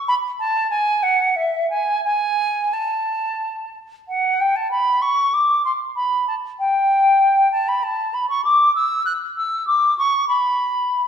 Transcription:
0.08 B5
0.39 A5
0.70 G#5
1.03 F#5
1.36 E5
1.70 G#5
2.04 G#5
2.73 A5
4.08 F#5
4.40 G5
4.56 A5
4.71 B5
5.02 C#6
5.33 D6
5.65 C6
5.96 B5
6.27 A5
6.59 G5
7.52 A5
7.68 B5
7.83 A5
8.14 B5
8.29 C#6
8.44 D6
8.75 E6
9.05 F#6
9.36 E6
9.67 D6
9.98 C#6
10.28 B5

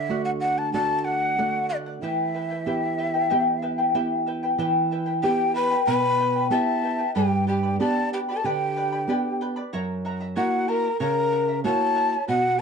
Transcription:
Already playing: D3 E5
0.09 A3 D4 F#4 A4 D5 F#5
0.25 F#5
0.40 A4 D5 F#5
0.58 D5 F#5 A5
0.73 A3 D4 F#4 A4 D5 F#5 A5
0.99 A5
1.05 A4 D5 F#5
1.22 D5 F#5
1.38 A3 D4 F#4 A4 D5 F#5
1.69 A4 D5 F#5
1.86 D5 F#5
2.02 E3 E4 G4 B4 E5 G5
2.34 E4 B4 E5 G5
2.50 E4 B4 G5
2.66 B3 E4 G4 B4 E5 G5
2.98 E4 B4 E5 G5
3.14 E4 B4 G5
3.30 B3 E4 G4 B4 E5 G5
3.62 E4 B4 E5 G5
3.78 E4 B4 G5
3.94 B3 E4 G4 B4 E5 G5
4.26 E4 B4 E5 G5
4.43 E4 B4 G5
4.58 E3 E4 G4 B4 E5 G5
4.91 E4 B4 E5 G5
5.06 E4 B4 G5
5.22 B3 E4 G4 B4 E5 G5
5.54 E4 B4 E5 G5 B5
5.71 E4 B4 G5
5.86 B2 E4 G4 B4 E5 G5 B5
6.19 E4 B4 E5 G5
6.36 E4 B4 G5
6.50 B3 E4 G4 B4 E5 G5 A5
6.83 E4 B4 E5 G5
6.98 E4 B4 G5
7.15 G2 G4 B4 D5 G5 B5
7.47 G4 B4 D5 G5 B5
7.63 B4 D5 B5
7.80 B3 D4 G4 B4 D5 G5 A5 B5
8.13 G4 B4 D5 G5 B5
8.29 G4 B4 D5 G5 B5
8.35 A4 A5
8.43 D3 G4 B4 D5 G5 B5
8.76 B4 D5 G5 B5
8.92 B4 D5 B5
9.08 B3 D4 G4 B4 D5 G5 B5
9.41 B4 D5 G5 B5
9.56 B4 D5 B5
9.73 F#2 E4 C#5 E5 F#5 A#5
10.05 E4 E5 F#5 A#5
10.20 E4 E5 A#5
10.36 A#3 E4 F#4 C#5 E5 F#5 A#5
10.68 E4 A#4 E5 F#5 A#5
10.84 E4 E5 A#5
11.00 C#3 E4 A#4 C#5 E5 F#5 A#5
11.32 E4 E5 F#5 A#5
11.48 E4 E5 A#5
11.64 A#3 E4 F#4 C#5 E5 F#5 A5
11.95 E4 E5 F#5 A#5
12.12 E4 E5 A#5
12.27 B2 F#4 B4 D#5 F#5

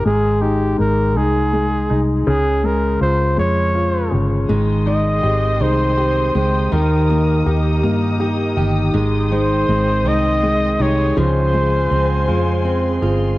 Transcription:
0.05 G#1 G#3 G#4
0.41 D#4 G4
0.78 G#1 G#3 A#4
1.16 C2 D#4 G#4
1.53 G#3
1.90 C2 D#4
2.27 C#2 C#3 G#4
2.63 G#3 A#4
3.01 C#2 F4 C5
3.37 F2 G#3 C#5
3.75 F4
4.11 G1 C#3
4.49 G#1 D#3 G#3 G5 C6 D#6
4.86 G#3 D#4 D#5
5.23 G#1 C4 G4
5.61 C2 G#3 D#4 C5
5.97 C4 G4
6.35 C#2 G#3 G4 C5
6.72 D#2 D#3 G4 A#4 D#5 A#5
7.09 A#3
7.46 D#2 D#4 G4
7.83 G2 A#3
8.20 D#4 G4
8.57 G1 D#3 G4
8.94 G#1 D#3 G#3 G5 C6
9.31 G#3 D#4 C5
9.69 G#1 G#3 C4
10.05 C2 G#3 D#4 D#5
10.43 G#3
10.79 C2 D#4 G4 C#5
11.17 C#2 C#3 F3 C5 F5 G#5
11.54 G#3
11.91 C#2 C4
12.28 F2 G#3 F4
12.65 C4
13.02 G1 F4 G#4

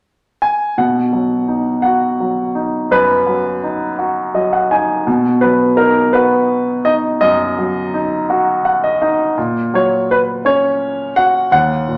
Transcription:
0.42 G#5
0.78 B2 F#5
1.13 F#3
1.48 D#4
1.82 F#4 F#5
2.20 F#3
2.55 D#4
2.91 F#2 B4
3.26 F#3
3.63 D#4
3.99 F#4
4.34 F#3 D#5
4.53 F#5
4.71 D#4 G#5
5.07 B2
5.41 F#3 B4
5.77 D#4 A#4
6.13 F#4 B4
6.85 D#4 D#5
7.21 F#2 D#5
7.58 F#3
7.94 D#4
8.30 F#4
8.65 F#5
8.84 D#5
9.02 D#4 D#5
9.38 A#2
9.74 F#3 C#5
10.11 B4
10.45 C#4 C#5
11.16 F#4 F#5
11.51 D#2 F#5
11.88 A#2

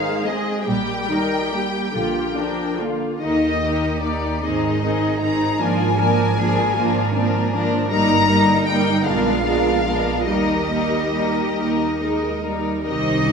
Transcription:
Already playing: G#1 D#3 G#3 D#4 G#4 C5 F5
0.25 G#3 C4 G#4 D#5
0.66 A#1 G3 A#3 G4 G5
1.09 D#3 G3 D#4 A#4
1.51 G3 A#3 G4
1.93 A#1 D3 A#3 F4
2.36 F3 D4 A#4
2.80 D3 A#3 F4
3.21 D#2 D#3 A#3 D#4 G4 D#5
3.62 D#3 A#3 D#4 G4
4.03 D#3 A#3 D#4 G4 D5
4.43 G#1 D#3 C4 D#4 G#4 D#5
4.83 D#3 C4 D#4 G#4
5.21 D#3 C4 D#4 G#4 A#5
5.60 G#1 F3 A#3 D4 F4 A#4 G#5
5.98 F3 A#3 D4 A#4
6.38 F3 A#3 D4 G#4 A#4
6.76 G#1 F3 A#3 D4 F4 A#4
7.14 F3 A#3 C4 D4 A#4
7.52 F3 A#3 D4 A#4
7.90 G1 G3 A#3 D#4 A#4 A#5
8.28 G3 A#3 D#4 A#4
8.66 G3 A#3 D#4 A#4 G5
9.04 A#1 G#3 B3 D4 F4 A#4 F5
9.45 G#3 B3 D4 A#4
9.86 G#3 B3 D4 A#4
10.28 D#2 G3 A#3 D#4 G4 A#4 D#5
10.70 G3 A#3 D#4 A#4
11.13 G3 A#3 D#4 A#4
11.57 D#2 A#3 D#4 A#4
12.01 G#3 D#4 A#4
12.45 G3 D#4 A#4
12.88 C2 D#3 C4 D#4 G4 D#5
13.28 D4

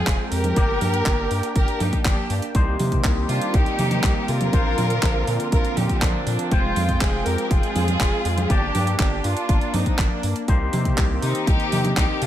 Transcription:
Already playing: F3 G#3 C4 F4 G#4 G5
0.07 F1, kick, clap, closed hi-hat
0.32 F2 G4 A#4, open hi-hat
0.44 closed hi-hat, high conga
0.56 G1 A#3 D4 G4 D5, kick, closed hi-hat
0.81 G2, open hi-hat, high conga
0.94 closed hi-hat
1.06 G1, kick, clap, closed hi-hat
1.31 G2, open hi-hat
1.43 closed hi-hat
1.56 G1 G4 A#4, kick, closed hi-hat
1.68 closed hi-hat
1.80 G2 D#4 G4, open hi-hat, high conga
1.93 kick, closed hi-hat
2.05 G1 D4 G4, kick, clap, closed hi-hat, high conga
2.30 G2, open hi-hat
2.42 closed hi-hat
2.54 C2 D#3 G3 A#3 C4 D#4 G4 C5, kick, closed hi-hat
2.79 C3, open hi-hat, high conga
2.92 kick, closed hi-hat
3.04 C2, kick, clap, closed hi-hat
3.29 C3 D4 F4, open hi-hat
3.42 closed hi-hat
3.54 C2 D#4 G4, kick, closed hi-hat
3.66 closed hi-hat
3.79 C3, open hi-hat, high conga
3.91 closed hi-hat, high conga
4.04 C2, kick, clap, closed hi-hat
4.28 C3 F4 A#4, open hi-hat
4.41 closed hi-hat, high conga
4.53 A#1 D3 F3 A#3 D4 F4 C5, kick, closed hi-hat
4.78 A#2, open hi-hat, high conga
4.90 closed hi-hat
5.03 A#1, kick, clap, closed hi-hat
5.27 A#2, open hi-hat
5.40 closed hi-hat
5.52 A#1 F4 A#4, kick, closed hi-hat
5.65 closed hi-hat
5.77 A#2 D#4 G4, open hi-hat, high conga
5.89 kick, closed hi-hat
6.02 A#1 A#3 D4, kick, clap, closed hi-hat, high conga
6.27 A#2, open hi-hat
6.39 closed hi-hat
6.51 F1 G#3 C4 F4 C5 G5, kick, closed hi-hat
6.76 F2, open hi-hat, high conga
6.89 kick, closed hi-hat
7.01 F1 F4 G#4, kick, clap, closed hi-hat
7.26 F2 G4 A#4, open hi-hat
7.38 closed hi-hat
7.51 F1 F4 G#4, kick, closed hi-hat
7.63 closed hi-hat
7.76 F2, open hi-hat, high conga
7.88 closed hi-hat, high conga
8.00 F1, kick, clap, closed hi-hat
8.25 F2, open hi-hat
8.38 closed hi-hat, high conga
8.49 G1 A#3 D4 G4 D5, kick, closed hi-hat
8.75 G2, open hi-hat, high conga
8.87 closed hi-hat
8.99 G1 D4 G4, kick, clap, closed hi-hat
9.24 G2 D4 F4, open hi-hat
9.37 closed hi-hat
9.49 G1, kick, closed hi-hat
9.61 closed hi-hat
9.74 G2 C4 D#4, open hi-hat, high conga
9.86 kick, closed hi-hat
9.99 G1 A#3 D4, kick, clap, closed hi-hat, high conga
10.23 G2, open hi-hat
10.36 closed hi-hat
10.48 C2 D#3 A#3 C4 D#4 G4 C5, kick, closed hi-hat
10.73 C3, open hi-hat, high conga
10.85 kick, closed hi-hat
10.98 C2, kick, clap, closed hi-hat
11.22 C3 C4 D#4, open hi-hat
11.35 closed hi-hat
11.47 C2 D#4 G4, kick, closed hi-hat
11.60 closed hi-hat
11.72 C3, open hi-hat, high conga
11.85 closed hi-hat, high conga
11.97 C2 D#4 G4, kick, clap, closed hi-hat
12.22 C3 D4 F4, open hi-hat

